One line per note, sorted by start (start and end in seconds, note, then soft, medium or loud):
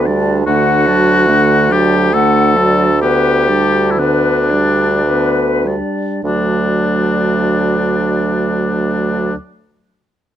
0.00 0.42 D2 soft
0.05 0.46 G3 soft
0.05 0.46 D4 soft
0.05 0.45 D5 soft
0.46 5.76 D2 soft
0.46 0.89 D3 soft
0.46 0.89 A3 soft
0.46 1.73 F#4 medium
0.46 0.88 F#5 soft
0.86 1.29 F#3 soft
0.86 1.29 D4 soft
0.86 1.31 D5 soft
1.28 1.72 D3 soft
1.28 1.72 A3 soft
1.28 1.72 F#5 soft
1.71 2.12 F#3 soft
1.71 2.13 D4 soft
1.71 2.15 G4 soft
1.71 1.94 D5 soft
2.12 2.58 D3 soft
2.12 2.59 A3 soft
2.12 3.01 A4 medium
2.12 2.58 F#5 soft
2.56 2.89 F#3 soft
2.56 3.01 D4 soft
2.56 3.01 D5 soft
3.02 3.51 D3 soft
3.02 3.51 B3 soft
3.02 3.92 G4 medium
3.02 3.49 B4 soft
3.47 4.00 G3 soft
3.47 4.00 D4 soft
3.47 3.99 D5 soft
3.91 4.00 E4 soft
3.98 4.53 D3 soft
3.98 4.53 B3 soft
3.98 5.66 D4 soft
3.98 4.51 B4 soft
4.50 5.06 G3 soft
4.50 4.90 D4 soft
4.50 5.05 D5 soft
5.06 5.67 D3 soft
5.06 5.68 B3 soft
5.06 5.68 B4 soft
5.65 6.24 G3 soft
5.65 6.24 D4 soft
5.65 6.23 D5 soft
6.24 9.33 D2 soft
6.24 9.33 F#3 soft
6.24 9.34 A3 soft
6.24 9.34 D4 soft
6.24 9.33 D5 soft